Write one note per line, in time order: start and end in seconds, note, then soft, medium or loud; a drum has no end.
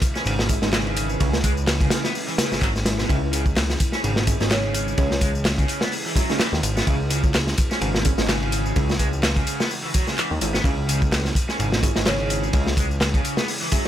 0.00 13.88 C#3 medium
0.00 13.88 E3 medium
0.00 13.88 G#3 medium
0.00 13.88 E4 medium
0.00 3.08 B4 medium
0.00 kick loud
0.00 open hi-hat medium
0.00 ride medium
0.00 tambourine medium
0.15 0.20 C#4 medium
0.15 snare soft
0.15 tambourine soft
0.26 0.58 G#1 loud
0.26 0.32 C#3 medium
0.26 ride loud
0.26 tambourine soft
0.39 0.44 B2 medium
0.39 snare medium
0.49 0.61 G#3 medium
0.49 0.61 C#4 medium
0.49 0.61 E4 medium
0.49 kick medium
0.49 open hi-hat medium
0.49 ride medium
0.49 tambourine medium
0.62 1.17 G#1 medium
0.62 0.72 G#3 medium
0.62 0.72 C#4 medium
0.62 0.72 D#4 loud
0.62 snare medium
0.62 tambourine soft
0.73 0.79 C#3 medium
0.73 snare loud
0.73 clap loud
0.73 ride medium
0.73 tambourine soft
0.86 1.32 C#3 medium
0.86 ride soft
0.97 open hi-hat medium
0.97 ride medium
0.97 tambourine medium
1.09 tambourine soft
1.20 1.88 C#2 loud
1.20 1.38 G#3 loud
1.20 1.38 C#4 medium
1.20 1.38 E4 loud
1.20 kick loud
1.20 ride loud
1.20 tambourine soft
1.33 snare medium
1.33 tambourine soft
1.44 1.50 G#3 medium
1.44 kick medium
1.44 open hi-hat medium
1.44 ride medium
1.44 tambourine medium
1.57 tambourine soft
1.67 snare loud
1.67 clap loud
1.67 ride medium
1.67 tambourine soft
1.81 2.03 C#3 medium
1.81 kick loud
1.81 open hi-hat medium
1.81 tambourine soft
1.90 snare loud
1.90 open hi-hat medium
1.90 ride medium
1.90 tambourine medium
2.04 2.12 B3 loud
2.04 snare medium
2.04 tambourine soft
2.15 open hi-hat medium
2.15 tambourine soft
2.28 2.33 E3 medium
2.28 tambourine soft
2.38 2.49 C#3 medium
2.38 snare loud
2.38 open hi-hat medium
2.38 ride medium
2.38 tambourine medium
2.52 2.60 G#1 soft
2.52 2.61 C#3 medium
2.52 snare soft
2.52 tambourine soft
2.61 3.05 G#1 loud
2.61 2.68 F#3 medium
2.61 kick medium
2.61 clap loud
2.61 ride medium
2.61 tambourine soft
2.76 snare soft
2.76 tambourine soft
2.85 3.03 G#3 medium
2.85 3.03 C#4 medium
2.85 3.03 E4 medium
2.85 snare loud
2.85 open hi-hat medium
2.85 ride medium
2.85 tambourine medium
2.98 3.09 B2 medium
2.98 snare soft
2.98 tambourine soft
3.09 3.76 C#2 loud
3.09 3.16 C#3 medium
3.09 3.27 G#3 medium
3.09 3.27 C#4 medium
3.09 3.27 E4 loud
3.09 6.86 G#4 medium
3.09 kick loud
3.09 ride medium
3.09 tambourine soft
3.33 3.43 C#3 medium
3.33 open hi-hat medium
3.33 ride medium
3.33 tambourine medium
3.46 kick loud
3.46 tambourine soft
3.56 snare loud
3.56 clap loud
3.56 ride medium
3.56 tambourine soft
3.70 snare medium
3.70 tambourine soft
3.80 kick loud
3.80 open hi-hat medium
3.80 ride medium
3.80 tambourine medium
3.92 3.98 C#4 medium
3.92 snare soft
3.92 tambourine soft
4.04 4.36 G#1 loud
4.04 4.10 C#3 medium
4.04 ride medium
4.04 tambourine soft
4.16 4.22 B2 medium
4.16 snare medium
4.27 4.39 G#3 medium
4.27 4.38 C#4 medium
4.27 4.38 E4 medium
4.27 kick loud
4.27 open hi-hat medium
4.27 ride medium
4.27 tambourine medium
4.40 4.94 G#1 medium
4.40 4.50 G#3 loud
4.40 4.50 C#4 medium
4.40 4.50 D#4 loud
4.40 snare medium
4.40 tambourine soft
4.50 4.57 C#3 medium
4.50 4.88 C#5 medium
4.50 snare loud
4.50 clap loud
4.50 ride medium
4.50 tambourine soft
4.63 5.10 C#3 medium
4.63 ride soft
4.74 open hi-hat medium
4.74 ride medium
4.74 tambourine medium
4.88 tambourine soft
4.98 5.65 C#2 loud
4.98 5.16 G#3 medium
4.98 5.16 C#4 medium
4.98 5.16 E4 loud
4.98 5.65 C#5 loud
4.98 kick loud
4.98 ride loud
4.98 tambourine soft
5.11 snare medium
5.21 5.28 G#3 medium
5.21 kick loud
5.21 open hi-hat medium
5.21 ride medium
5.21 tambourine medium
5.35 tambourine soft
5.45 snare loud
5.45 clap loud
5.45 ride medium
5.45 tambourine soft
5.58 5.81 C#3 medium
5.58 kick loud
5.58 open hi-hat medium
5.58 tambourine soft
5.68 open hi-hat medium
5.68 ride medium
5.68 tambourine medium
5.81 5.91 B3 loud
5.81 snare medium
5.81 tambourine soft
5.92 open hi-hat medium
5.92 tambourine soft
6.06 6.11 E3 medium
6.16 6.28 F#3 medium
6.16 6.27 G#3 medium
6.16 6.27 C#4 medium
6.16 6.27 E4 loud
6.16 kick loud
6.16 open hi-hat medium
6.16 ride medium
6.16 tambourine medium
6.29 6.39 C#3 medium
6.29 6.39 G#3 loud
6.29 6.39 C#4 medium
6.29 6.39 D#4 loud
6.29 snare soft
6.29 tambourine soft
6.40 6.50 E3 medium
6.40 snare loud
6.40 clap loud
6.40 ride medium
6.40 tambourine soft
6.53 6.61 D#2 loud
6.53 snare soft
6.63 6.82 G#1 loud
6.63 open hi-hat medium
6.63 ride medium
6.63 tambourine medium
6.77 6.85 B3 loud
6.77 snare soft
6.77 tambourine soft
6.87 7.54 C#2 loud
6.87 6.93 C#3 medium
6.87 7.05 G#3 medium
6.87 7.05 C#4 medium
6.87 7.05 E4 loud
6.87 10.64 F#4 medium
6.87 kick loud
6.87 ride medium
6.87 tambourine soft
7.10 7.21 C#3 medium
7.10 open hi-hat medium
7.10 ride medium
7.10 tambourine medium
7.24 kick loud
7.24 tambourine soft
7.34 snare loud
7.34 clap loud
7.34 ride medium
7.34 tambourine soft
7.47 snare medium
7.47 tambourine soft
7.58 kick loud
7.58 open hi-hat medium
7.58 ride medium
7.58 tambourine medium
7.71 7.76 C#4 medium
7.71 snare soft
7.71 tambourine soft
7.81 8.14 G#1 loud
7.81 7.88 C#3 medium
7.81 ride loud
7.81 tambourine soft
7.95 8.00 B2 medium
7.95 snare medium
8.05 8.17 G#3 medium
8.05 8.16 C#4 medium
8.05 8.16 E4 medium
8.05 kick loud
8.05 open hi-hat medium
8.05 ride medium
8.05 tambourine medium
8.18 8.72 G#1 medium
8.18 8.28 G#3 loud
8.18 8.28 C#4 medium
8.18 8.28 D#4 loud
8.18 snare medium
8.18 tambourine soft
8.28 8.35 C#3 medium
8.28 snare loud
8.28 clap loud
8.28 ride loud
8.28 tambourine soft
8.42 8.88 C#3 medium
8.42 ride soft
8.52 open hi-hat medium
8.52 ride medium
8.52 tambourine medium
8.66 tambourine soft
8.76 9.43 C#2 loud
8.76 8.94 G#3 loud
8.76 8.94 C#4 medium
8.76 8.94 E4 loud
8.76 kick loud
8.76 ride medium
8.76 tambourine soft
8.89 snare medium
8.89 tambourine soft
8.99 9.06 G#3 medium
8.99 kick medium
8.99 open hi-hat medium
8.99 ride medium
8.99 tambourine medium
9.13 tambourine soft
9.23 snare loud
9.23 clap loud
9.23 ride medium
9.23 tambourine soft
9.36 9.59 C#3 medium
9.36 kick loud
9.36 open hi-hat soft
9.36 tambourine soft
9.47 open hi-hat medium
9.47 ride medium
9.47 tambourine medium
9.60 9.68 B3 loud
9.60 snare medium
9.60 tambourine soft
9.71 open hi-hat medium
9.71 tambourine soft
9.84 9.89 E3 medium
9.94 10.06 F#3 medium
9.94 kick loud
9.94 open hi-hat medium
9.94 ride medium
9.94 tambourine medium
10.07 10.17 C#3 medium
10.07 snare soft
10.07 tambourine soft
10.18 10.28 E3 medium
10.18 clap loud
10.18 tambourine soft
10.31 10.39 D#2 loud
10.41 10.60 G#1 medium
10.41 10.59 G#3 medium
10.41 10.59 C#4 medium
10.41 10.59 E4 medium
10.41 open hi-hat medium
10.41 ride medium
10.41 tambourine medium
10.54 10.63 B3 loud
10.54 snare soft
10.54 tambourine soft
10.64 11.32 C#2 loud
10.64 10.71 C#3 medium
10.64 10.83 G#3 loud
10.64 10.83 C#4 medium
10.64 10.83 E4 loud
10.64 13.88 G#4 medium
10.64 kick loud
10.64 ride medium
10.64 tambourine soft
10.89 10.99 C#3 medium
10.89 open hi-hat medium
10.89 ride medium
10.89 tambourine medium
11.02 kick loud
11.02 tambourine soft
11.12 snare loud
11.12 clap loud
11.12 ride medium
11.12 tambourine soft
11.25 snare soft
11.25 tambourine soft
11.35 kick loud
11.35 open hi-hat medium
11.35 ride medium
11.35 tambourine medium
11.49 11.54 C#4 medium
11.49 snare soft
11.49 tambourine soft
11.59 11.92 G#1 loud
11.59 11.66 C#3 medium
11.59 ride medium
11.59 tambourine soft
11.72 11.78 B2 medium
11.72 snare medium
11.83 11.94 G#3 medium
11.83 11.94 C#4 medium
11.83 11.94 E4 loud
11.83 kick loud
11.83 open hi-hat medium
11.83 ride medium
11.83 tambourine medium
11.96 12.50 G#1 medium
11.96 12.06 G#3 loud
11.96 12.05 C#4 medium
11.96 12.06 D#4 loud
11.96 snare medium
11.96 tambourine soft
12.06 12.13 C#3 medium
12.06 12.44 C#5 medium
12.06 snare loud
12.06 clap loud
12.06 ride loud
12.06 tambourine soft
12.20 12.66 C#3 medium
12.20 ride soft
12.30 open hi-hat medium
12.30 ride medium
12.30 tambourine medium
12.43 tambourine soft
12.53 13.21 C#2 loud
12.53 12.72 G#3 medium
12.53 12.72 C#4 medium
12.53 12.72 E4 loud
12.53 kick loud
12.53 ride loud
12.53 tambourine soft
12.67 snare medium
12.77 12.84 G#3 medium
12.77 kick medium
12.77 open hi-hat medium
12.77 ride medium
12.77 tambourine medium
12.91 tambourine soft
13.01 snare loud
13.01 clap loud
13.01 ride medium
13.01 tambourine soft
13.14 13.37 C#3 medium
13.14 kick loud
13.14 open hi-hat soft
13.14 tambourine soft
13.25 open hi-hat medium
13.25 ride medium
13.25 tambourine medium
13.37 13.46 B3 loud
13.37 snare medium
13.37 tambourine soft
13.48 open hi-hat medium
13.48 tambourine soft
13.62 13.67 E3 medium
13.72 13.84 F#3 medium
13.72 13.83 G#3 medium
13.72 13.83 C#4 medium
13.72 13.83 E4 medium
13.72 kick medium
13.72 open hi-hat medium
13.72 ride medium
13.72 tambourine medium